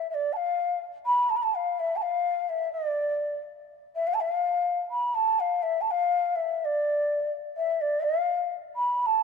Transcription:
0.10 0.15 E5 medium
0.14 0.34 D5 medium
0.33 0.81 F5 medium
0.33 0.37 A5 medium
1.06 1.31 B5 medium
1.29 1.38 A5 medium
1.36 1.44 B5 medium
1.42 1.56 A5 medium
1.55 1.81 F5 medium
1.79 1.97 E5 medium
1.96 2.03 A5 medium
2.02 2.50 F5 medium
2.49 2.72 E5 medium
2.72 3.42 D5 medium
3.95 4.08 E5 medium
4.07 4.15 F5 medium
4.14 4.22 A5 medium
4.20 4.32 E5 medium
4.32 4.79 F5 medium
4.91 5.16 B5 medium
5.14 5.41 A5 medium
5.40 5.64 F5 medium
5.62 5.82 E5 medium
5.81 5.86 A5 medium
5.86 5.92 A5 medium
5.91 6.37 F5 medium
6.35 6.60 E5 medium
6.60 6.66 E5 medium
6.65 7.32 D5 medium
7.57 7.82 E5 medium
7.81 8.05 D5 medium
8.04 8.52 F5 medium
8.76 9.02 B5 medium
9.02 9.23 A5 loud
9.02 9.07 B5 medium

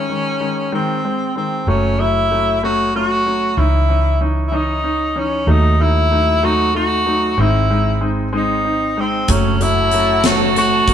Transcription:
0.00 0.74 C#4 medium
0.09 0.35 D#3 medium
0.09 0.35 G#3 soft
0.09 0.35 C#4 soft
0.40 0.67 D#3 soft
0.40 0.67 G#3 soft
0.40 0.67 C#4 medium
0.72 0.98 D#3 medium
0.72 0.98 G#3 medium
0.72 0.98 C4 medium
0.72 1.33 C4 soft
1.04 1.30 G#3 soft
1.04 1.31 C4 medium
1.36 1.62 D#3 soft
1.36 1.62 G#3 soft
1.36 1.62 C4 medium
1.36 1.66 C4 medium
1.67 3.53 F#1 medium
1.67 1.93 F#3 medium
1.67 1.94 A3 medium
1.67 1.94 C#4 medium
1.67 2.02 C#4 medium
1.99 2.25 F#3 medium
1.99 2.25 A3 soft
1.99 2.26 C#4 medium
1.99 2.63 E4 medium
2.31 2.57 F#3 medium
2.31 2.57 A3 medium
2.31 2.57 C#4 medium
2.63 2.89 F#3 medium
2.63 2.89 A3 medium
2.63 2.89 C#4 medium
2.63 2.93 F#4 medium
2.95 3.21 F#3 medium
2.95 3.21 A3 soft
2.95 3.21 C#4 medium
2.95 3.60 F#4 medium
3.26 3.52 F#3 soft
3.26 3.52 A3 soft
3.26 3.52 C#4 medium
3.57 5.44 C#2 medium
3.57 3.83 E3 medium
3.57 3.83 C#4 medium
3.57 3.84 D#4 medium
3.57 4.21 E4 medium
3.89 4.15 E3 medium
3.89 4.15 C#4 soft
3.89 4.15 D#4 medium
4.21 4.47 E3 medium
4.21 4.47 C#4 medium
4.21 4.47 D#4 medium
4.48 4.78 E3 medium
4.48 4.57 E4 medium
4.52 4.78 C#4 medium
4.52 4.79 D#4 medium
4.52 5.20 D#4 medium
4.84 5.10 C#4 medium
4.84 5.10 D#4 medium
5.16 5.42 E3 medium
5.16 5.42 C#4 medium
5.16 5.52 C#4 medium
5.16 5.42 D#4 medium
5.47 7.34 D#2 medium
5.47 5.74 F#3 medium
5.47 5.74 A3 medium
5.47 5.74 D#4 medium
5.47 5.83 D#4 medium
5.79 6.05 F#3 medium
5.79 6.06 A3 soft
5.79 6.06 D#4 medium
5.79 6.46 E4 medium
6.11 6.37 F#3 medium
6.11 6.37 A3 medium
6.11 6.37 D#4 medium
6.43 6.69 F#3 medium
6.43 6.69 A3 medium
6.43 6.69 D#4 medium
6.43 6.76 F#4 medium
6.75 7.01 A3 medium
6.75 7.01 D#4 medium
6.75 7.42 F#4 medium
7.06 7.32 F#3 medium
7.06 7.32 A3 soft
7.06 7.32 D#4 medium
7.38 9.24 G#1 medium
7.38 7.64 G#3 medium
7.38 7.64 C4 medium
7.38 7.64 D#4 medium
7.38 8.03 E4 medium
7.70 7.96 G#3 medium
7.70 7.96 C4 soft
7.70 7.96 D#4 medium
8.01 8.27 G#3 medium
8.01 8.27 C4 medium
8.01 8.28 D#4 medium
8.33 8.59 G#3 medium
8.33 8.59 C4 medium
8.33 8.59 D#4 medium
8.37 9.01 D#4 medium
8.65 8.91 C4 medium
8.65 8.91 D#4 medium
8.97 9.23 G#3 medium
8.97 9.23 C4 soft
8.97 9.30 C4 medium
8.97 9.23 D#4 medium
9.28 10.94 F#1 medium
9.28 9.55 F#3 medium
9.28 9.55 A3 medium
9.28 9.55 C#4 medium
9.28 9.64 C#4 medium
9.28 10.94 F#4 medium
9.28 10.94 C#5 medium
9.28 10.94 A5 medium
9.28 kick medium
9.28 closed hi-hat medium
9.60 9.86 F#3 medium
9.60 9.86 A3 medium
9.60 9.87 C#4 medium
9.60 10.27 E4 medium
9.60 closed hi-hat soft
9.91 10.19 F#3 medium
9.91 10.19 A3 medium
9.91 10.19 C#4 medium
9.91 closed hi-hat soft
10.24 10.50 F#3 medium
10.24 10.51 A3 medium
10.24 10.51 C#4 medium
10.24 10.57 F#4 medium
10.24 snare loud
10.24 closed hi-hat medium
10.56 10.82 A3 medium
10.56 10.82 C#4 medium
10.56 10.94 F#4 medium
10.56 closed hi-hat soft
10.88 10.94 F#3 medium
10.88 10.94 A3 medium
10.88 10.94 C#4 medium
10.88 kick medium
10.88 closed hi-hat soft

